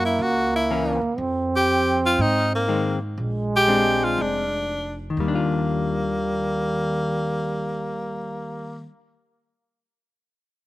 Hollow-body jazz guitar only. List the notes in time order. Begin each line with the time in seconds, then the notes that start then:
0.70 E3 A#3 C#4
2.68 D#3 G#3 C4
3.68 G#3 C4 D4
5.10 D#3
5.20 G3
5.28 D4
5.35 F4